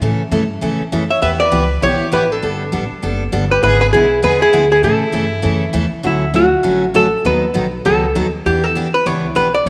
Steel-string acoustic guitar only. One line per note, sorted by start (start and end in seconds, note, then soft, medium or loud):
0.02 0.21 C#3 medium
0.02 0.21 E3 medium
0.02 0.21 A3 medium
0.02 0.22 C#4 medium
0.02 0.21 A4 medium
0.31 0.42 C#3 medium
0.31 0.42 E3 medium
0.31 0.42 A3 medium
0.31 0.43 C#4 medium
0.31 0.43 A4 medium
0.61 0.81 C#3 medium
0.61 0.81 E3 medium
0.61 0.81 A3 medium
0.61 0.82 C#4 medium
0.61 0.82 A4 medium
0.92 1.03 C#3 medium
0.92 1.03 E3 medium
0.92 1.03 A3 medium
0.92 1.03 C#4 medium
0.92 1.03 A4 medium
1.22 1.41 E3 medium
1.22 1.42 B3 medium
1.22 1.42 E4 medium
1.22 1.42 G4 medium
1.51 1.63 E3 medium
1.51 1.63 B3 medium
1.51 1.63 E4 medium
1.51 1.63 G4 medium
1.82 2.02 E3 medium
1.82 2.02 B3 medium
1.82 2.02 E4 medium
1.82 2.02 G4 medium
2.12 2.23 E3 medium
2.12 2.23 B3 medium
2.12 2.23 E4 medium
2.12 2.23 G4 medium
2.42 2.62 G3 medium
2.42 2.62 B3 medium
2.42 2.62 D4 medium
2.42 2.63 A4 medium
2.72 2.83 G3 medium
2.72 2.83 B3 medium
2.72 2.84 D4 medium
2.72 2.84 A4 medium
3.02 3.22 G3 medium
3.02 3.22 B3 medium
3.02 3.23 D4 medium
3.02 3.23 A4 medium
3.32 3.43 G3 medium
3.32 3.44 B3 medium
3.32 3.44 D4 medium
3.32 3.44 A4 medium
3.63 3.83 D3 medium
3.63 3.83 G#3 medium
3.63 3.83 B3 medium
3.63 3.83 E4 medium
3.63 3.83 G#4 medium
3.94 4.04 D3 medium
3.94 4.04 G#3 medium
3.94 4.04 B3 medium
3.94 4.04 E4 medium
3.94 4.05 G#4 medium
4.22 4.43 D3 medium
4.22 4.43 G#3 medium
4.22 4.43 B3 medium
4.22 4.43 E4 medium
4.22 4.43 G#4 medium
4.53 4.64 D3 medium
4.53 4.64 G#3 medium
4.53 4.64 B3 medium
4.53 4.64 E4 medium
4.53 4.64 G#4 medium
4.83 5.03 C#3 medium
4.83 5.03 E3 medium
4.83 5.03 A3 medium
4.83 5.03 C#4 medium
4.83 5.03 A4 medium
5.12 5.24 C#3 medium
5.12 5.24 E3 medium
5.12 5.24 A3 medium
5.12 5.24 C#4 medium
5.12 5.24 A4 medium
5.42 5.63 C#3 medium
5.42 5.63 E3 medium
5.42 5.63 A3 medium
5.42 5.63 C#4 medium
5.42 5.63 A4 medium
5.73 5.84 C#3 medium
5.73 5.85 E3 medium
5.73 5.85 A3 medium
5.73 5.85 C#4 medium
5.73 5.85 A4 medium
6.03 6.23 D3 medium
6.03 6.23 F#3 medium
6.03 6.24 A3 medium
6.03 6.24 C#4 medium
6.03 6.24 F#4 medium
6.34 6.45 D3 medium
6.34 6.45 F#3 medium
6.34 6.45 A3 medium
6.34 6.45 C#4 medium
6.34 6.45 F#4 medium
6.63 6.83 D3 medium
6.63 6.84 F#3 medium
6.63 6.84 A3 medium
6.63 6.84 C#4 medium
6.63 6.84 F#4 medium
6.94 7.05 D3 medium
6.94 7.05 F#3 medium
6.94 7.06 A3 medium
6.94 7.06 C#4 medium
6.94 7.06 F#4 medium
7.25 7.44 D#3 medium
7.25 7.45 F#3 medium
7.25 7.45 B3 medium
7.25 7.45 D#4 medium
7.25 7.45 A4 medium
7.54 7.65 D#3 medium
7.54 7.65 F#3 medium
7.54 7.66 B3 medium
7.54 7.66 D#4 medium
7.54 7.66 A4 medium
7.85 8.05 D#3 medium
7.85 8.05 F#3 medium
7.85 8.05 B3 medium
7.85 8.05 D#4 medium
7.85 8.05 A4 medium
8.15 8.26 D#3 medium
8.15 8.26 F#3 medium
8.15 8.26 B3 medium
8.15 8.26 D#4 medium
8.15 8.27 A4 medium
8.46 8.65 E3 medium
8.46 8.65 B3 medium
8.46 8.66 D4 medium
8.46 8.66 G4 medium
8.75 8.86 E3 medium
8.75 8.87 B3 medium
8.75 8.87 D4 medium
8.75 8.87 G4 medium
9.06 9.25 E3 medium
9.06 9.26 B3 medium
9.06 9.26 D4 medium
9.06 9.26 G4 medium
9.35 9.46 E3 medium
9.35 9.47 B3 medium
9.35 9.47 D4 medium
9.35 9.47 G4 medium